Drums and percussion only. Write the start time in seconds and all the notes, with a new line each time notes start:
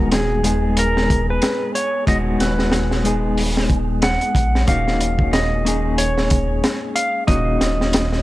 0.12 snare, closed hi-hat
0.44 closed hi-hat
0.77 closed hi-hat
0.97 snare
1.10 kick, closed hi-hat
1.42 snare, closed hi-hat
1.75 closed hi-hat
2.07 kick, closed hi-hat
2.40 snare, closed hi-hat
2.59 snare
2.72 snare, closed hi-hat
2.91 snare
3.05 closed hi-hat
3.37 open hi-hat
3.57 snare
3.70 kick, closed hi-hat
4.02 snare, closed hi-hat
4.21 closed hi-hat
4.35 kick, closed hi-hat
4.55 snare
4.67 kick, closed hi-hat
4.88 snare
5.00 closed hi-hat
5.19 kick
5.33 snare, closed hi-hat
5.66 closed hi-hat
5.98 closed hi-hat
6.18 snare
6.30 kick, closed hi-hat
6.64 snare, closed hi-hat
6.96 closed hi-hat
7.28 kick, closed hi-hat
7.61 snare, closed hi-hat
7.81 snare
7.93 snare, closed hi-hat
8.12 snare